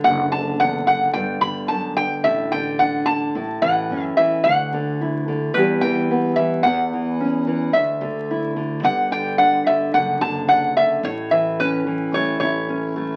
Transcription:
<<
  \new Staff \with { instrumentName = "Resonator guitar played with a steel bar" } { \time 4/4 \key d \major \tempo 4 = 109 fis''8 a''8 fis''8 fis''8 g''8 b''8 a''8 g''8 | e''8 g''8 fis''8 a''4 fis''4 e''8 | fis''2 b'8 g''4 e''8 | fis''2 e''4. r8 |
fis''8 g''8 fis''8 e''8 fis''8 a''8 fis''8 e''8 | cis''8 e''8 b'4 cis''8 cis''4. | }
  \new Staff \with { instrumentName = "Nylon-string guitar" } { \clef bass \time 4/4 \key d \major << { r1 | r4 d'4 r4 cis'4 | r4 e'4 <e g b g'>4 b4 | r4 cis'4 r4 e'4 |
r4 d'4 r4 d'4 | r4 cis'4 a8 e'8 cis'8 a8 | } \\ { <fis, d>8 d8 e,8 fis,8 g,8 d8 fis,8 g,8 | a,8 d4 d8 a,8 e4 e8 | d,8 d4 d8 e,8 e4 e8 | e,8 e4 e8 d,8 d4 d8 |
g,8 d4 d8 fis,8 d4 d8 | a,8 e4 e2~ e8 | } >> }
  \new Staff \with { instrumentName = "Upright bass" } { \clef bass \time 4/4 \key d \major fis,,2 g,,8 g,,4. | a,,2 a,,8 a,,8 fis,8 e,8 | d,2 e,8 e,4. | e,2 d,8 d,4. |
g,,2 fis,,8 fis,,4. | a,,2 a,,8 a,,4. | }
>>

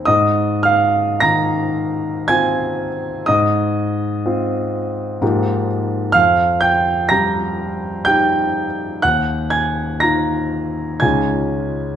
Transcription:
\new Staff \with { instrumentName = "Grand piano" } { \time 3/4 \key aes \mixolydian \tempo 4 = 61 << { <ees'' ees'''>8 <f'' f'''>8 <bes'' bes'''>4 <aes'' aes'''>4 | <ees'' ees'''>2~ <ees'' ees'''>8 r8 | <f'' f'''>8 <g'' g'''>8 <bes'' bes'''>4 <g'' g'''>4 | <ges'' ges'''>8 <aes'' aes'''>8 <bes'' bes'''>4 <aes'' aes'''>4 | } \\ { aes,4 ees4 <c' f'>4 | aes,4 <c' f'>4 <aes, f bes ees' g'>4 | f,4 g4 <ees' g'>4 | ees,4 <ees' f'>4 <des, aes des' ees' f'>4 | } >> }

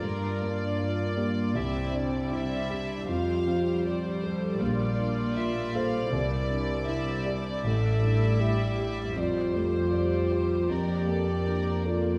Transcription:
<<
  \new Staff \with { instrumentName = "Violin section" } { \time 4/4 \key f \major \tempo 4 = 79 d''1 | c''2 d''2~ | d''1 | c''2 d''2 | }
  \new Staff \with { instrumentName = "Violin section" } { \time 4/4 \key f \major bes'8 d''4. e''8 d''8 e''4 | f''4 d''8 c''8 d''4 e''8 f''8 | d''4 e''8 d''8 e''2 | d''8 c''8 d''8 c''8 bes'8 a'8 bes'8 d''8 | }
  \new Staff \with { instrumentName = "Alto flute" } { \time 4/4 \key f \major d'4. bes8 c'4. d'8 | f'4. a'8 bes'4. c''8 | bes'4. r8 a'4 g'4 | f'2 g'4. f'8 | }
  \new Staff \with { instrumentName = "Viola section" } { \time 4/4 \key f \major << { f'2 e'2 | g'2 f'2 | e'1 | g'1 | } \\ { bes2 g2 | g1 | g1~ | g2 bes2 | } >> }
  \new Staff \with { instrumentName = "Grand piano" } { \time 4/4 \key f \major g,8 bes8 f'8 g'8 c,8 d'8 e'8 g'8 | f,8 c'8 g'8 a'8 bes,,8 d'8 f'8 a'8 | c,8 d'8 e'8 g'8 a,,8 d'8 e'8 g'8 | f,8 a8 f'8 g'8 f,8 bes8 d'8 a'8 | }
  \new Staff \with { instrumentName = "Cello section" } { \clef bass \time 4/4 \key f \major g,2 c2 | f,2 bes,2 | c2 a,2 | f,1 | }
>>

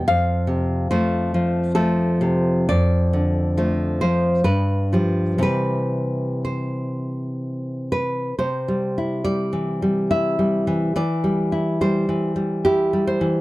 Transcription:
\new Staff \with { instrumentName = "Nylon-string guitar" } { \clef bass \time 3/4 \key c \major \tempo 4 = 69 << { f''4 c''4 a'4 | d''4. c''8 b'4 | b'4 c''4. b'8 | c''4 d''4 e''4 |
d''4 c''4 g'8 c''8 | } \\ { f,8 c8 <f a>8 f8 <f a>8 c8 | f,8 d8 <f a>8 f8 g,8 <f g>8 | <c e g>2. | \tuplet 3/2 { c8 g8 e'8 g8 e8 g8 e'8 g8 e8 } |
\tuplet 3/2 { e8 g8 e'8 g8 e8 g8 e'8 g8 e8 } | } >> }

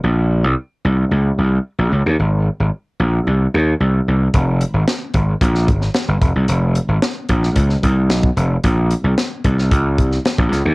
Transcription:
<<
  \new Staff \with { instrumentName = "Slap bass" } { \clef bass \time 4/4 \key bes \dorian \tempo 4 = 112 bes,,8. c,16 r8 c,8 des,8 c,8 r16 bes,,16 des,16 ees,16 | aes,,8. aes,,16 r8 bes,,8 c,8 ees,8 c,8 c,8 | f,,8. aes,,16 r8 aes,,8 bes,,8 aes,,8 r16 g,,16 f,,16 c,16 | f,,8. aes,,16 r8 bes,,8 des,8 c,8 ces,8 f,,8 |
bes,,8. c,16 r8 c,8 des,8 c,8 r16 bes,,16 des,16 ees,16 | }
  \new DrumStaff \with { instrumentName = "Drums" } \drummode { \time 4/4 r4 r4 r4 r4 | r4 r4 r4 r4 | <hh bd>8 hh8 <hh sn>8 <hh bd>8 <hh bd>16 sn16 <hh bd>16 sn16 <hh sn>8 <hh bd>8 | hh8 hh8 <hh sn>8 <hh bd>16 sn16 <hh bd>16 sn16 <hh bd>8 <hh sn>16 bd16 hh8 |
<hh bd>8 hh8 <hh sn>8 <hh bd>16 sn16 <hh bd>8 <hh bd>16 sn16 <hh sn>16 bd16 <hh sn>8 | }
>>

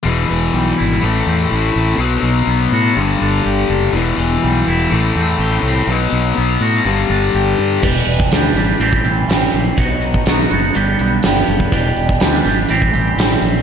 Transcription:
<<
  \new Staff \with { instrumentName = "Clean electric guitar" } { \time 4/4 \key e \minor \tempo 4 = 123 e,8 e8 g8 e'8 a,8 c'8 e'8 c'8 | b,8 fis8 b8 fis'8 g,8 d'8 g'8 d'8 | e,8 e8 g8 e'8 a,8 c'8 g'8 c'8 | b,8 fis8 b8 fis'8 g,8 d'8 g'8 d'8 |
<e, b, e g d' g'>4 <e g d' g'>8 <e g d' g'>8 <a, e g c' g'>8 <g c' g'>8 <a, e g c' g'>4 | <b, fis b dis' fis'>4 <fis b dis' fis'>8 <b dis' fis'>8 <g, d g b d' g'>8 <g b d' g'>8 <g, d g b d' g'>4 | <e, b, e g d' g'>4 <e g d' g'>8 <e g d' g'>8 <a, e g c' g'>8 <g c' g'>8 <a, e g c' g'>4 | }
  \new Staff \with { instrumentName = "Distorted electric guitar" } { \clef bass \time 4/4 \key e \minor <e, b, e>2 <a, e a>2 | <b, fis b>2 <g, d g>2 | <e, b, e>2 <a, e a>2 | <b, fis b>2 <g, d g>2 |
r1 | r1 | r1 | }
  \new Staff \with { instrumentName = "Fingered electric bass" } { \clef bass \time 4/4 \key e \minor e,,8 e,,8 b,,8 gis,,8 a,,8 e,8 a,,8 a,,8 | b,,8 b,,8 b,,8 a,8 g,,8 g,,8 g,,8 fis,,8 | e,,8 e,,8 b,,8 e,,8 a,,8 e,8 a,,8 c,8 | b,,8 b,,8 b,,8 a,8 g,,8 g,,8 g,,8 g,8 |
e,,8 e,,8 d,8 gis,,8 a,,8 a,,8 a,,8 ais,,8 | b,,4 b,,8 fis,,8 g,,8 b,,8 g,,8 fis,,8 | e,,8 e,,8 d,8 gis,,8 a,,8 a,,8 a,,8 ais,,8 | }
  \new DrumStaff \with { instrumentName = "Drums" } \drummode { \time 4/4 r4 r4 r4 r4 | r4 r4 r4 r4 | r4 r4 r4 r4 | r4 r4 r4 r4 |
<cymc bd>8 hh16 bd16 <hh sn>8 <hh sn>8 hh16 bd16 hh8 <hh sn>8 hh8 | <hh bd>8 hh16 bd16 <hh sn>8 hh8 hh8 hh8 <hh sn>8 hh16 bd16 | <hh bd>8 hh16 bd16 <hh sn>8 <hh sn>8 hh16 bd16 hh8 <hh sn>8 hh8 | }
>>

